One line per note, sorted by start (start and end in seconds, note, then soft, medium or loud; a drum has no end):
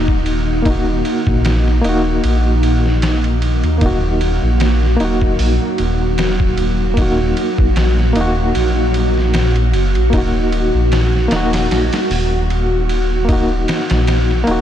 0.00 1.02 D#1 medium
0.00 0.60 A#3 medium
0.00 14.61 A#3 medium
0.00 0.62 D#4 medium
0.00 3.83 D#4 medium
0.00 0.63 F#4 loud
0.08 kick medium
0.26 ride medium
0.62 1.78 A#3 medium
0.62 1.80 D#4 medium
0.62 kick loud
0.62 ride medium
0.70 1.82 F#4 medium
1.05 ride medium
1.27 1.81 A#1 medium
1.27 kick loud
1.45 snare loud
1.45 ride medium
1.68 snare soft
1.81 2.20 D#1 medium
1.81 3.76 A#3 medium
1.81 3.78 D#4 medium
1.81 ride medium
1.89 3.80 F#4 loud
2.24 3.64 A#1 medium
2.24 ride medium
2.63 ride medium
2.86 snare soft
3.02 snare loud
3.02 ride medium
3.24 ride soft
3.42 ride medium
3.64 3.80 D#2 medium
3.64 ride soft
3.78 4.39 D#1 loud
3.78 14.61 F#3 medium
3.78 4.94 A#3 medium
3.78 4.96 D#4 medium
3.78 14.61 F#4 medium
3.78 kick loud
3.78 ride medium
3.86 4.98 F#4 medium
4.21 ride medium
4.43 4.97 A#1 medium
4.60 snare loud
4.60 ride medium
4.83 snare soft
4.97 5.35 D#1 medium
4.97 6.91 A#3 medium
4.97 6.93 D#4 medium
4.97 ride medium
5.05 6.95 F#4 medium
5.21 kick medium
5.39 5.59 A#1 medium
5.39 open hi-hat medium
5.78 7.34 D#1 medium
5.78 ride medium
6.18 snare loud
6.18 ride medium
6.40 kick medium
6.58 ride medium
6.94 8.10 A#3 medium
6.94 8.12 D#4 medium
6.94 kick loud
6.94 ride medium
7.02 8.14 F#4 medium
7.37 ride medium
7.58 8.12 A#1 medium
7.58 kick medium
7.76 snare loud
7.76 ride medium
7.99 snare soft
8.13 8.51 D#1 medium
8.13 10.07 A#3 medium
8.13 10.09 D#4 medium
8.13 ride medium
8.21 10.11 F#4 loud
8.55 9.74 A#1 medium
8.55 ride medium
8.94 ride medium
9.18 snare soft
9.34 snare loud
9.34 ride medium
9.56 ride soft
9.73 9.97 F#1 medium
9.73 ride medium
9.95 10.11 A#1 medium
9.95 ride soft
10.10 10.70 D#1 medium
10.10 11.26 A#3 medium
10.10 11.27 D#4 medium
10.10 kick loud
10.10 ride medium
10.18 11.30 F#4 medium
10.52 ride medium
10.74 11.28 A#1 medium
10.92 snare loud
10.92 ride medium
11.15 snare soft
11.28 11.67 D#1 medium
11.28 13.23 A#3 medium
11.28 snare loud
11.28 ride medium
11.32 13.25 D#4 medium
11.32 13.27 F#4 loud
11.53 snare loud
11.53 ride medium
11.71 11.90 A#1 medium
11.71 snare loud
11.71 ride medium
11.93 snare loud
11.93 ride medium
12.11 13.65 D#1 medium
12.11 open hi-hat medium
12.50 ride medium
12.89 ride medium
13.25 14.41 A#3 medium
13.25 14.43 D#4 medium
13.25 kick loud
13.25 ride medium
13.33 14.45 F#4 medium
13.68 snare loud
13.68 ride medium
13.90 14.44 A#1 medium
13.90 snare loud
13.90 ride medium
14.07 snare loud
14.07 ride medium
14.31 snare soft
14.44 14.61 A#3 loud
14.44 14.61 D#4 medium
14.44 ride medium
14.48 14.61 D#1 medium
14.48 14.61 F#4 loud